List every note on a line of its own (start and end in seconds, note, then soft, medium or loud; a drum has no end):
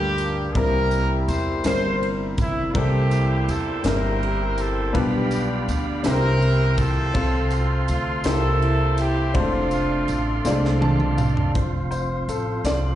0.00 0.51 D2 loud
0.00 0.56 G2 medium
0.00 0.55 G3 medium
0.00 0.56 A3 medium
0.00 0.50 A#3 medium
0.00 0.55 A#3 medium
0.00 0.50 D4 medium
0.00 0.56 D4 medium
0.00 0.56 F4 medium
0.00 0.55 G4 loud
0.00 0.38 A4 medium
0.00 0.56 A#4 medium
0.18 ride medium
0.18 tambourine soft
0.55 1.24 C2 medium
0.55 1.61 C3 medium
0.55 1.48 G3 medium
0.55 1.48 A#3 medium
0.55 1.48 C4 medium
0.55 1.48 E4 medium
0.55 1.61 E4 medium
0.55 1.62 G4 medium
0.55 1.48 A#4 medium
0.55 1.11 A#4 loud
0.55 kick loud
0.55 ride medium
0.91 ride soft
0.91 tambourine medium
1.28 1.62 E2 medium
1.28 1.62 C5 loud
1.28 ride medium
1.28 tambourine medium
1.64 2.71 G1 medium
1.64 2.57 G3 medium
1.64 2.58 A#3 medium
1.64 2.58 C4 medium
1.64 2.58 E4 medium
1.64 2.58 A#4 medium
1.64 2.08 C5 loud
1.64 snare loud
1.64 ride medium
1.64 tambourine medium
2.03 ride soft
2.38 2.73 E4 medium
2.38 kick medium
2.38 ride medium
2.38 tambourine medium
2.74 3.44 C2 medium
2.74 3.81 C3 medium
2.74 3.67 G3 medium
2.74 3.68 A#3 medium
2.74 3.81 A#3 medium
2.74 3.68 C4 medium
2.74 3.68 E4 medium
2.74 3.81 E4 medium
2.74 4.93 G4 medium
2.74 3.49 G4 loud
2.74 3.68 A4 medium
2.74 4.93 C5 medium
2.74 4.93 E5 medium
2.74 4.93 G5 medium
2.74 kick loud
2.74 ride medium
3.11 ride soft
3.11 tambourine medium
3.48 3.82 E2 medium
3.48 3.86 A4 medium
3.48 ride soft
3.48 tambourine medium
3.83 4.91 G1 medium
3.83 4.77 G3 medium
3.83 4.77 A#3 medium
3.83 4.77 C4 medium
3.83 4.78 E4 medium
3.83 4.91 E4 medium
3.83 4.91 G4 medium
3.83 4.78 A#4 medium
3.83 4.59 A#4 loud
3.83 snare loud
3.83 ride medium
3.83 tambourine medium
4.23 ride soft
4.58 4.96 A4 loud
4.58 ride soft
4.58 tambourine medium
4.93 5.64 B1 medium
4.93 6.00 B2 medium
4.93 5.87 G3 medium
4.93 5.87 B3 medium
4.93 5.87 D4 medium
4.93 6.02 D4 medium
4.93 5.87 F4 medium
4.93 7.12 G4 medium
4.93 5.87 B4 medium
4.93 6.03 D5 medium
4.93 6.03 F5 medium
4.93 6.04 B5 medium
4.93 kick medium
4.93 ride medium
4.97 5.69 G4 medium
5.31 ride soft
5.31 tambourine medium
5.68 6.02 D2 medium
5.68 ride soft
5.68 tambourine medium
6.03 7.11 C2 loud
6.03 7.10 C3 medium
6.03 6.97 A#3 medium
6.03 6.97 C4 medium
6.03 6.97 E4 medium
6.03 7.12 E4 medium
6.03 6.98 G4 medium
6.03 7.12 G4 medium
6.03 6.75 A#4 loud
6.03 6.11 B4 medium
6.03 8.23 C5 medium
6.03 7.14 E5 medium
6.03 7.14 G5 medium
6.03 snare loud
6.03 ride medium
6.03 tambourine medium
6.11 7.01 C5 medium
6.42 ride soft
6.78 7.84 C4 medium
6.78 7.52 F4 medium
6.78 7.51 A4 loud
6.78 kick medium
6.78 ride medium
6.78 tambourine soft
7.14 7.84 C2 medium
7.14 8.21 C3 medium
7.14 8.07 C4 medium
7.14 8.08 F4 medium
7.14 8.24 A4 medium
7.14 8.08 A4 medium
7.14 8.24 F5 medium
7.14 11.52 C6 medium
7.14 kick loud
7.14 ride medium
7.50 7.88 F4 medium
7.50 ride soft
7.50 tambourine medium
7.88 8.22 D2 loud
7.88 8.23 F4 medium
7.88 ride medium
7.88 tambourine medium
8.24 9.31 C2 loud
8.24 9.31 C3 medium
8.24 9.18 A#3 medium
8.24 9.35 A#3 medium
8.24 9.18 C4 medium
8.24 9.18 E4 medium
8.24 9.32 E4 medium
8.24 9.18 G4 medium
8.24 8.95 A4 loud
8.24 9.18 C5 medium
8.24 9.35 E5 medium
8.24 9.34 G5 medium
8.24 snare loud
8.24 ride medium
8.24 tambourine medium
8.62 ride soft
8.98 9.36 G4 loud
8.98 ride medium
8.98 tambourine medium
9.34 10.04 F1 medium
9.34 9.41 G#3 medium
9.34 10.78 A3 medium
9.34 10.28 C4 medium
9.34 10.28 D4 medium
9.34 10.78 D4 medium
9.34 10.28 F4 medium
9.34 10.82 F4 loud
9.34 11.54 A4 medium
9.34 10.28 C5 medium
9.34 11.54 D5 medium
9.34 11.54 F5 medium
9.34 kick loud
9.34 ride medium
9.40 10.31 A3 medium
9.71 ride soft
9.71 tambourine medium
10.08 10.42 A1 medium
10.08 ride soft
10.08 tambourine medium
10.45 11.51 C2 loud
10.45 10.51 G#3 medium
10.45 11.38 C4 medium
10.45 11.39 D4 medium
10.45 11.39 F4 medium
10.45 11.39 D5 medium
10.45 snare medium
10.45 tambourine medium
10.51 11.41 A3 medium
10.65 snare medium
10.81 11.16 A5 medium
10.81 high tom medium
11.00 mid tom medium
11.17 11.52 F5 medium
11.17 mid tom loud
11.17 tambourine soft
11.37 floor tom medium
11.54 12.25 F1 medium
11.54 12.95 F3 soft
11.54 12.95 F3 medium
11.54 12.95 C4 medium
11.54 12.95 F4 soft
11.54 12.95 C5 medium
11.54 kick medium
11.54 closed hi-hat medium
11.91 12.29 C5 medium
11.91 closed hi-hat soft
11.91 tambourine soft
12.28 12.62 A1 medium
12.28 12.67 A4 medium
12.28 closed hi-hat medium
12.28 tambourine medium
12.64 12.95 C2 medium
12.64 12.95 D5 medium
12.64 snare medium
12.64 closed hi-hat medium
12.64 tambourine medium